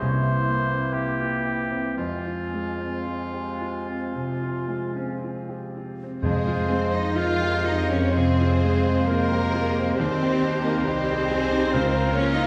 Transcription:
Already playing: clarinet A#3
0.00 grand piano C2, bassoon E3, oboe C5, flute E5
0.24 grand piano E4
0.49 grand piano A#3
0.70 grand piano C4
0.92 grand piano E4, oboe G4, flute G5
1.20 grand piano F4
1.46 grand piano E4
1.71 grand piano C4
1.96 grand piano F2, bassoon F3, clarinet G#3, oboe F4, flute G#5
2.26 grand piano F4
2.53 grand piano G#3
2.80 grand piano C4
3.06 clarinet G#3, grand piano F4
3.33 grand piano G4
3.61 grand piano F4
3.88 grand piano C4
4.14 grand piano C3, clarinet F4
4.43 grand piano F4
4.68 grand piano G#3
4.94 grand piano C4, clarinet C#4
5.17 clarinet C4
5.24 grand piano F4
5.49 grand piano G4
5.77 grand piano F4
6.04 grand piano C4
6.22 timpani F2, double bass section F2, grand piano F2, french horn section G#3, bassoon G#3, cello section G#3, clarinet G#4, violin section G#4 C5, oboe C5, flute F5
6.47 grand piano F4
6.68 grand piano G#3, french horn section C4, cello section C4, clarinet C5, violin section C5
6.92 grand piano C4, french horn section D#4, cello section D#4, violin section D#5, clarinet D#5
7.15 bassoon G#3, french horn section F4, grand piano F4, cello section F4, violin section A#4 F5, oboe C5, flute F5, clarinet F5
7.42 grand piano G4
7.63 french horn section D#4, cello section D#4, grand piano F4, violin section D#5, clarinet D#5
7.87 grand piano C4, french horn section C#4, cello section C#4, clarinet C#5, violin section C#5
8.11 bassoon G#3, french horn section C4, cello section C4, viola section G#4, violin section G#4 C5, oboe C5, clarinet C5, flute F5
8.16 grand piano C3
8.40 grand piano F4
8.61 grand piano G#3, violin section G#4
8.88 grand piano C4
9.04 french horn section A#3, cello section A#3, viola section A#4, violin section A#4 C5, clarinet A#4
9.10 grand piano F4
9.32 grand piano G4
9.52 grand piano F4, viola section G#4
9.79 grand piano C4
9.94 double bass section D#2, bassoon G3, french horn section C4, cello section C4, viola section G4, violin section G4 C5, oboe C5, clarinet C5, flute D#5
10.00 grand piano D#2
10.23 grand piano G4
10.42 grand piano C4
10.60 french horn section A#3, violin section A#4
10.65 cello section A#3, grand piano D#4, clarinet A#4
10.83 double bass section C2, bassoon G3, french horn section C4, cello section C4, violin section G4 C5, oboe C5, clarinet C5, flute D#5
10.88 grand piano G4
11.11 grand piano G#4
11.30 grand piano G4, violin section G#4
11.53 grand piano D#4
11.71 double bass section C#2, grand piano C#2, bassoon F3, viola section F4, violin section A#4, oboe A#4, flute F5
11.94 grand piano A#4
12.13 grand piano A#3, french horn section C#4, cello section C#4, violin section C#5, clarinet C#5
12.30 french horn section D#4, cello section D#4, violin section D#5, clarinet D#5
12.38 grand piano F4

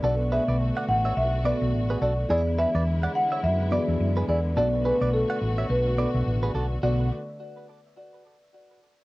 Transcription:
Already playing: string section D3 B3
0.02 fingered electric bass B1, fm electric piano B2 B3 A4 D5, string section A3 F#4, clean electric guitar F#4 A4, marimba D5
0.32 clean electric guitar G#4 B4, marimba E5
0.48 fingered electric bass B1, clean electric guitar B4 D5
0.77 clean electric guitar D5 F#5
0.88 fingered electric bass A1, marimba F#5
1.05 clean electric guitar C#5 E5
1.17 fingered electric bass B1, marimba E5
1.44 fm electric piano B2 B3 A4 D5, clean electric guitar B4 D5, marimba D5
1.62 fingered electric bass B1
1.73 fingered electric bass A1
1.90 clean electric guitar G#4 B4
2.02 fingered electric bass B1, clean electric guitar F#4 A4, marimba D5
2.29 fingered electric bass E2, string section D3 G#3 B3 E4, fm electric piano E3 B3 G#4 C#5, clean electric guitar E4 G#4, marimba D5
2.38 fm electric piano D5
2.59 clean electric guitar G#4 B4, marimba E5
2.75 fingered electric bass E2, clean electric guitar B4 D5
3.03 clean electric guitar D5 F#5
3.15 marimba F#5
3.32 clean electric guitar C#5 E5
3.43 fingered electric bass F#2, marimba E5
3.70 fm electric piano E3 B3 F#4 D5, clean electric guitar B4 D5, marimba D5
3.78 fm electric piano G#4
3.88 fingered electric bass E2
4.00 fingered electric bass F#2
4.17 clean electric guitar G#4 B4
4.28 fingered electric bass E2, clean electric guitar E4 G#4, marimba D5
4.55 fingered electric bass B1, fm electric piano B2 B3 A4 D5, string section A3 F#4, clean electric guitar F#4 A4, marimba D5
4.85 clean electric guitar G#4 B4, marimba B4
5.01 fingered electric bass B1, clean electric guitar B4 D5
5.13 marimba A4
5.30 clean electric guitar D5 F#5
5.41 fingered electric bass A1
5.58 clean electric guitar C#5 E5
5.70 fingered electric bass B1, marimba B4
5.97 fm electric piano B2 B3 A4 D5, clean electric guitar B4 D5
6.14 fingered electric bass B1
6.26 fingered electric bass A1
6.43 clean electric guitar G#4 B4
6.54 fingered electric bass B1, clean electric guitar F#4 A4
6.83 fingered electric bass B1, fm electric piano B2 B3 A4 D5, string section D3 A3 B3 F#4, clean electric guitar F#4, marimba D5

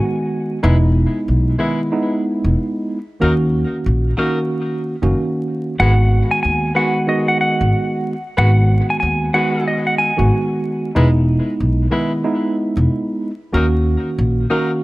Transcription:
Already playing: tine electric piano D#3 G#3 B3 F#4, clean electric guitar G#5
0.63 upright bass E1, tine electric piano G#3 B3 D#4 E4, saxophone section G#3 E4 B4
1.28 upright bass B1
1.58 tine electric piano D#3 G#3 B3 E4, saxophone section G#3 E4 B4
1.92 tine electric piano G#3 B3 D#4 E4
2.44 upright bass E1
3.20 upright bass D#2, tine electric piano D#3 A#3 C#4 F#4, saxophone section F#3 D#4 A#4
3.86 upright bass A#1
4.17 tine electric piano D#3 A#3 C#4 F#4, saxophone section F#3 D#4 A#4
5.02 upright bass F#1, tine electric piano D#3 A#3 C#4 F#4
5.79 upright bass G#1, tine electric piano D#3 G#3 B3 F#4, saxophone section G#3 F#4 B4, clean electric guitar F#5
6.31 clean electric guitar G#5
6.43 upright bass D#2, clean electric guitar G#5
6.75 tine electric piano D#3 G#3 B3 F#4, saxophone section G#3 F#4 B4, clean electric guitar F#5
7.07 tine electric piano D#3 G#3 B3 F#4, clean electric guitar D#5
7.28 clean electric guitar F#5
7.41 clean electric guitar F#5
7.61 upright bass G#1
8.37 upright bass G#1, tine electric piano D#3 G#3 B3 F#4, saxophone section G#3 F#4 B4, clean electric guitar F#5
8.90 clean electric guitar G#5
9.00 upright bass D#2, clean electric guitar G#5
9.33 tine electric piano D#3 G#3 B3 F#4, saxophone section G#3 F#4 B4, clean electric guitar F#5
9.68 clean electric guitar D#5
9.87 clean electric guitar F#5
9.98 clean electric guitar G#5
10.17 upright bass G#1, tine electric piano D#3 G#3 B3 F#4
10.95 upright bass E1, tine electric piano G#3 B3 D#4 E4, saxophone section G#3 E4 B4
11.60 upright bass B1
11.91 tine electric piano D#3 G#3 B3 E4, saxophone section G#3 E4 B4
12.24 tine electric piano G#3 B3 D#4 E4
12.77 upright bass E1
13.52 upright bass D#2, tine electric piano D#3 A#3 C#4 F#4, saxophone section F#3 D#4 A#4
14.18 upright bass A#1
14.50 tine electric piano D#3 A#3 C#4 F#4, saxophone section F#3 D#4 A#4

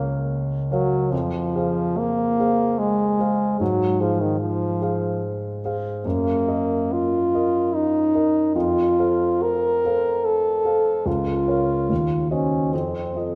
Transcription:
Already playing: grand piano C#2 A#4 C#5 F5, french horn A#3
0.71 french horn F#3, grand piano A#4 C#5 F5
1.11 grand piano F2, french horn F3
1.55 grand piano G#4 C5 F5
1.98 french horn A#3
2.40 grand piano G#4 C5 F5
2.79 french horn G#3
3.20 grand piano G#4 C5 F5
3.60 grand piano G#2, french horn F#3
4.00 french horn F3, grand piano G#4 C5 F5
4.21 french horn D#3
4.40 french horn F3
4.81 grand piano G#4 C5 F5
5.65 grand piano G#4 C5 F5
6.05 grand piano F#2, french horn A#3
6.48 grand piano A#4 D#5
6.93 french horn F4
7.34 grand piano A#4 D#5
7.75 french horn D#4
8.15 grand piano A#4 D#5
8.55 grand piano F2, french horn F4
8.99 grand piano A4 C5 F5
9.43 french horn A#4
9.84 grand piano A4 C5 F5
10.25 french horn A4
10.65 grand piano A4 C5 F5
11.06 grand piano C#2, french horn F4
11.48 grand piano A#4 C#5 F5
11.89 grand piano D#2
12.31 french horn C#4, grand piano F#4 C5 D#5
12.72 grand piano F2, french horn C4
13.15 grand piano F4 A4 D#5

